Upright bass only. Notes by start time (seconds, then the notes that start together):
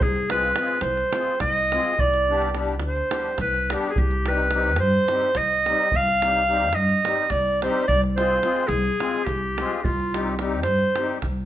0.02 C2
0.82 C2
1.41 C2
1.99 C2
2.80 D2
3.39 C2
3.98 C2
4.78 G2
5.36 C2
5.94 C2
6.73 G2
7.32 C2
7.89 C2
8.69 C2
9.27 C2
9.85 C2
10.64 G2
11.23 C2